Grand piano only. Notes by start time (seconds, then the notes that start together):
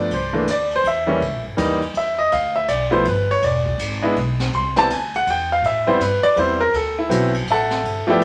Already playing: A3 B3 D4 D5
0.14 C5
0.33 E3 A3 A#3 D4
0.51 D5
0.76 C5
0.87 E5
1.06 E3 G3 A#3 C#4
1.57 E3 G3 A#3 D#4
1.97 E5
2.18 D#5
2.32 F5
2.56 E5
2.69 D5
2.91 F3 A3 B3 E4 C5
3.08 B4
3.31 C#5
3.44 D5
4.02 G#3 B3 D4 E4
4.55 C6
4.76 G3 B3 C4 E4 A5
4.93 G#5
5.16 F#5
5.30 G5
5.52 F5
5.66 E5
5.87 G3 B3 C4 E4 C5
6.02 B4
6.23 D5
6.36 G3 B3 C4 E4 C5
6.61 A#4
6.76 A4
6.98 E4
7.09 F#3 B3 C4 E4
7.51 A4 E5 F#5 A5
8.07 F3 A3 B3 E4 G4 D5 E5 G5